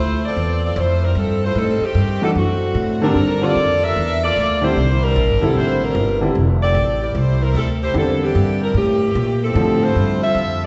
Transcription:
Already playing: D2 A3 E4 F4 C5
0.25 C4 F4 A4 D5
0.36 E2
0.64 C4 F4 A4 D5
0.76 F2 A3 E4 F4 C5
1.04 G3 C4 E4 A#4
1.15 G2 F3 C4 E4 A4
1.45 A3 E4 F4 C5
1.55 A2 G3 C4 D#4 A4
1.81 D#3 A3 C4 G4, muted upright bass stroke
1.95 G2
2.21 E3 G3 A3 C4 D4 D#4 F#4 A4
2.35 F#2 D3 A3 C4 F#4
2.75 A2
3.02 D3 F3 G3 C4 D4 A4 A#4
3.15 G2
3.41 D3 G3 A#3 C4 F4 A4 D5
3.55 F2
3.83 D4 A4 A#4 E5
3.96 E2
4.24 A#3 F4 A4 D5
4.36 D2
4.61 D3 G3 A#3 C4 E4 G4 C5
4.76 C2
5.03 G3 D4 E4 A#4
5.16 A#1
5.29 G1
5.41 E1 D3 G3 C4 D4 E4 A4
5.55 A1 A#3 E4 G4 C5
5.83 G3 D4 E4 A#4
5.95 G1
6.21 D3 G3 C4 E4
6.35 F1
6.62 C4 G4 A4 D5
6.75 A1
7.01 A#3 E4 G4 D5
7.15 C2 A3 E4 G4 C5
7.42 G3 C4 E4 A#4
7.54 D2 G3 C4 E4 A4
7.83 A3 E4 G4 C5
7.94 E2 D3 G3 C4 E4
7.98 F3 A#3 D4 A4
8.24 E3 A#3 D4 G4
8.35 G2
8.63 G3 D4 E4 A#4
8.74 A2 E3 A#3 C#4 G4
9.15 A#2
9.43 F3 C4 E4 A4
9.54 A2 D3 F3 G3 C4
9.83 A3 E4 F4 C5
9.96 G2
10.23 C4 F4 A4 E5
10.35 F2

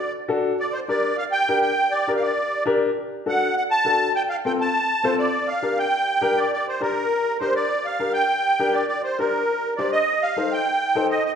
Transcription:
Already playing: D5
0.28 D4 F#4 A4
0.60 D5
0.73 C5
0.88 D4 G4 A#4 D5
1.18 F5
1.32 G5
1.48 D4 G4 A#4
1.62 G5
1.91 D5
2.07 D4 G4 A#4
2.16 F5
2.22 D5
2.66 D4 G4 A#4
3.26 D4 F#4 A4 F#5
3.57 F#5
3.71 A5
3.85 D4 F#4 A4
4.16 G5
4.30 F5
4.45 C4 F4 A4 G5
4.61 A5
5.04 C4 F4 A4 C5
5.18 D5
5.48 F5
5.62 D4 G4 A#4
5.79 G5
6.21 D4 G4 A#4
6.38 D5
6.53 D5
6.68 C5
6.80 D4 G4 A#4
7.40 D4 G4 A#4 C5
7.56 D5
7.85 F5
7.99 D4 G4 A#4
8.13 G5
8.60 D4 G4 A#4
8.74 D5
8.88 D5
9.04 C5
9.18 D4 G4 A#4
9.77 D4 G4 C5 D5
9.92 D#5
10.23 F5
10.37 D#4 A4 C5
10.52 G5
10.95 D#4 A4 C5
11.10 D#5
11.25 D#5

